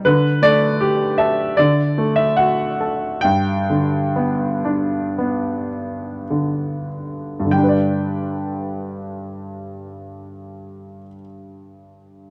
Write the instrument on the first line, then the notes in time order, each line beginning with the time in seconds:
grand piano
0.05 D3 B4
0.42 A3 D5
0.81 G4
1.18 A4 E5
1.57 D3 D5
1.98 A3
2.16 E5
2.37 F#4 F#5
2.81 A4
3.21 G2 G5
3.70 D3
4.16 B3
4.65 D4
5.18 B3
6.30 D3
7.40 G2
7.45 D3
7.51 G3 G5
7.58 D4
7.63 B4
7.69 D5